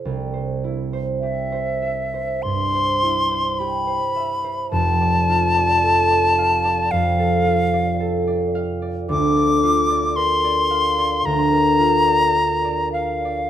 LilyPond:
<<
  \new Staff \with { instrumentName = "Flute" } { \time 4/4 \key c \major \tempo 4 = 54 r4 e''4 c'''4 b''4 | a''2 f''4. r8 | \key bes \lydian d'''4 c'''4 bes''4. f''8 | }
  \new Staff \with { instrumentName = "Harp" } { \time 4/4 \key c \major <c, c''>16 c''16 e'16 c''16 g'16 c''16 e''16 c''16 g,16 c''16 e'16 c''16 g'16 c''16 e''16 c''16 | <f,, f,>16 d''16 f'16 d''16 a'16 d''16 f''16 d''16 f,16 a'16 f'16 d''16 a'16 d''16 f''16 d''16 | \key bes \lydian d,16 d''16 f'16 d''16 bes'16 d''16 f''16 d''16 d,16 bes'16 f'16 d''16 bes'16 d''16 f''16 d''16 | }
>>